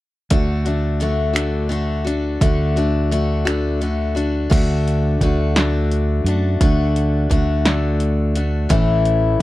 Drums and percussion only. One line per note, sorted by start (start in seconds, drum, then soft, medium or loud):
0.30 kick medium
0.30 closed hi-hat medium
0.66 closed hi-hat medium
1.01 closed hi-hat soft
1.36 finger snap medium
1.36 closed hi-hat medium
1.72 closed hi-hat medium
2.07 closed hi-hat medium
2.41 kick loud
2.41 closed hi-hat medium
2.77 closed hi-hat soft
3.12 closed hi-hat medium
3.47 finger snap medium
3.47 closed hi-hat medium
3.82 closed hi-hat soft
4.17 closed hi-hat medium
4.51 kick loud
4.51 closed hi-hat medium
4.51 crash medium
4.88 closed hi-hat medium
5.21 kick medium
5.21 closed hi-hat medium
5.56 snare medium
5.56 closed hi-hat medium
5.92 closed hi-hat medium
6.26 closed hi-hat medium
6.61 kick loud
6.61 closed hi-hat medium
6.96 closed hi-hat medium
7.31 kick medium
7.31 closed hi-hat medium
7.65 snare medium
7.65 closed hi-hat medium
8.00 closed hi-hat medium
8.35 closed hi-hat medium
8.70 kick loud
8.70 closed hi-hat medium
9.05 closed hi-hat soft